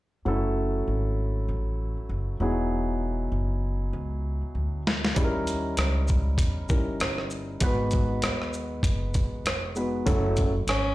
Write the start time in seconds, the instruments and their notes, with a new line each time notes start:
0.25 upright bass F#1, grand piano F#3 A3 C#4 E4 A4
0.88 upright bass G#1
1.49 upright bass A1
1.97 muted upright bass stroke
2.09 upright bass F#1
2.40 upright bass E1, grand piano F#3 B3 D#4 E4 G#4
3.32 upright bass F#1
3.93 upright bass C#2
4.42 muted upright bass stroke
4.55 upright bass D2
4.87 snare
5.05 snare
5.15 upright bass D#2, grand piano G3 C#4 D#4 E4 G#4, kick, closed hi-hat
5.24 grand piano A#4
5.47 closed hi-hat, shaker
5.77 upright bass C#2, cross-stick, closed hi-hat
6.08 kick, shaker
6.38 upright bass E2, kick, closed hi-hat
6.69 grand piano G3 C#4 D#4 E4 A#4, kick, shaker
6.87 muted upright bass stroke
7.00 upright bass G1, cross-stick, closed hi-hat
7.18 cross-stick
7.30 shaker
7.60 upright bass G#1, grand piano G#3 B3 D#4 F#4 B4, kick, closed hi-hat
7.91 kick, closed hi-hat, shaker
8.22 upright bass D#2, cross-stick, closed hi-hat
8.42 cross-stick
8.53 shaker
8.83 upright bass F#1, kick, closed hi-hat
9.14 kick, closed hi-hat, shaker
9.32 muted upright bass stroke
9.45 upright bass F1, cross-stick, closed hi-hat
9.76 grand piano G#3 B3 D#4 F#4 B4, shaker
10.06 upright bass F#1, grand piano F#3 A3 C#4 E4 A4, kick, closed hi-hat
10.37 kick, closed hi-hat, shaker
10.67 upright bass G#1, tenor saxophone C#4, cross-stick, closed hi-hat